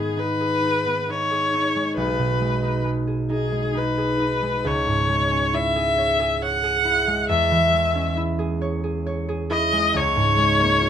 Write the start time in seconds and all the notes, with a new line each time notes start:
Already playing: G#2 D#3 G#3 B3 D#4 G#4
0.17 D#4 B4
0.40 G#4
0.63 D#4
0.85 B3
1.08 D#4 C#5
1.31 G#4
1.54 D#4
1.76 G#3
1.97 B1 B4
2.19 B2
2.41 G#3
2.62 D#4
2.85 G#3
3.07 G#4
3.29 D#4 G#4
3.52 G#3
3.75 D#4 B4
3.98 G#4
4.20 D#4
4.42 G#3
4.65 C#2 C#5
4.87 G#2
5.09 G#3
5.31 C#4
5.53 E4 E5
5.76 G#4
5.98 C#5
6.20 G#4
6.42 C#5 F#5
6.63 G#4
6.85 E4
7.07 G#3
7.29 E2 E5
7.51 E3
7.73 G#3
7.95 C#4
8.17 E4
8.39 G#4
8.61 C#5
8.84 G#4
9.06 C#5
9.29 G#4
9.50 E4 D#5
9.73 G#3
9.94 C#2 C#5
10.16 G#2
10.38 G#3
10.60 A#3
10.81 F4